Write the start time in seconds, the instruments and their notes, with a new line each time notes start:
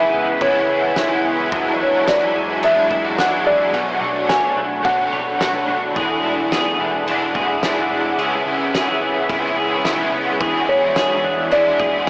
Already playing: clean electric guitar C#3 E4 G#4, overdriven electric guitar G#3 B3 E4, ambient pad B4 E5 G#5 C#6, felt piano E5
0.13 picked electric bass C#2, clean electric guitar B3
0.40 picked electric bass C#2, overdriven electric guitar E3 G#3, clean electric guitar E4, felt piano C#5, kick, ride
0.44 overdriven electric guitar B3 E4
0.69 picked electric bass C#2, clean electric guitar G#4
0.95 picked electric bass C#2, overdriven electric guitar E3 G#3 B3, clean electric guitar E4, snare, ride, tambourine
1.01 overdriven electric guitar E4
1.24 picked electric bass C#2, clean electric guitar B3
1.50 overdriven electric guitar E2 B2 F#3 G#3 D4, picked electric bass E2, clean electric guitar E3 F#4, ambient pad F#4 G#5 D6, kick, ride
1.55 overdriven electric guitar E4
1.77 picked electric bass E2, overdriven electric guitar D4 E4, clean electric guitar D4
1.82 overdriven electric guitar F#3 G#3, felt piano C#5
2.07 clean electric guitar F#4, felt piano D5, snare, ride, tambourine
2.35 picked electric bass E2, clean electric guitar G#3
2.61 picked electric bass E2, overdriven electric guitar F#3 G#3, clean electric guitar D4, felt piano E5, ride
2.65 overdriven electric guitar D4 E4
2.90 picked electric bass E2, clean electric guitar E4, kick
3.04 clean electric guitar F#4
3.16 picked electric bass E2, overdriven electric guitar F#3 G#3 D4, clean electric guitar D4, snare, ride, tambourine
3.20 overdriven electric guitar E4, felt piano F#5
3.45 picked electric bass E2, clean electric guitar G#3, felt piano D5
3.72 picked electric bass B1, overdriven electric guitar B2 F#3 A3 D4 F#4 C#5, clean electric guitar B2, ambient pad D4 A4 B5 C#6, ride
3.98 picked electric bass B1, overdriven electric guitar F#4 C#5, clean electric guitar F#4
4.03 overdriven electric guitar A3 D4
4.29 clean electric guitar C#5, felt piano G#5, snare, ride, tambourine
4.56 picked electric bass B1, clean electric guitar D4
4.82 picked electric bass B1, overdriven electric guitar A3 D4, clean electric guitar F#4, felt piano F#5, kick, ride
4.86 overdriven electric guitar F#4 C#5
5.12 picked electric bass B1, clean electric guitar C#5
5.38 picked electric bass B1, overdriven electric guitar A3 D4, clean electric guitar F#4, snare, ride, tambourine
5.42 overdriven electric guitar F#4 C#5
5.68 picked electric bass B1, clean electric guitar D4
5.93 picked electric bass E1, overdriven electric guitar E2 E3, clean electric guitar E3 G#4, ambient pad G#4 E5 F#5 D6, kick, ride
5.97 overdriven electric guitar G#3 D4 F#4
6.02 overdriven electric guitar E4
6.23 picked electric bass E1, clean electric guitar E4
6.52 clean electric guitar G#4, snare, ride, tambourine
6.79 picked electric bass E1, clean electric guitar D4
7.06 picked electric bass E1, overdriven electric guitar G#3 D4, clean electric guitar E4, ride
7.10 overdriven electric guitar E4 F#4
7.35 picked electric bass E1, clean electric guitar G#4, kick
7.61 picked electric bass E1, overdriven electric guitar G#3 D4, clean electric guitar E4, snare, ride, tambourine
7.65 overdriven electric guitar E4 F#4
7.90 picked electric bass E1, clean electric guitar D4
8.17 picked electric bass C#2, overdriven electric guitar C#3 G#3 B3 C#4, clean electric guitar C#3 G#4, ambient pad B5 C#6, ride
8.21 overdriven electric guitar E4
8.45 picked electric bass C#2, overdriven electric guitar B3 E4, clean electric guitar E4
8.51 overdriven electric guitar C#4
8.74 clean electric guitar G#4, snare, ride, tambourine
9.01 picked electric bass C#2, clean electric guitar B3
9.29 picked electric bass C#2, overdriven electric guitar G#3 B3 C#4, clean electric guitar E4, kick, ride
9.34 overdriven electric guitar E4
9.57 picked electric bass C#2, clean electric guitar G#4
9.84 picked electric bass C#2, overdriven electric guitar G#3 B3 C#4, clean electric guitar E4, snare, ride, tambourine
9.89 overdriven electric guitar E4
10.12 picked electric bass C#2, clean electric guitar B3
10.37 overdriven electric guitar E2 E3, picked electric bass E2, clean electric guitar E3, kick, ride
10.42 overdriven electric guitar G#3 D4 F#4, clean electric guitar G#4, ambient pad E5 F#5
10.46 overdriven electric guitar E4
10.68 picked electric bass E2, clean electric guitar E4, felt piano C#5
10.96 clean electric guitar G#4, snare, ride, tambourine
11.24 picked electric bass E2, clean electric guitar D4
11.50 picked electric bass E2, overdriven electric guitar G#3 D4, clean electric guitar E4, felt piano D5, ride
11.55 overdriven electric guitar E4 F#4
11.79 picked electric bass E2, clean electric guitar G#4, kick
12.06 overdriven electric guitar G#3